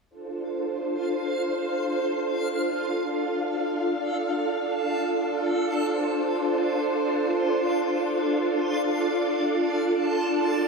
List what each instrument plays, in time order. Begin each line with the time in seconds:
0.09 string machine D4 F4 A4 C5, synth texture F4 F5
2.95 synth texture A4, string machine F5
5.81 string machine C5, synth texture F5
8.67 string machine D5, synth texture A5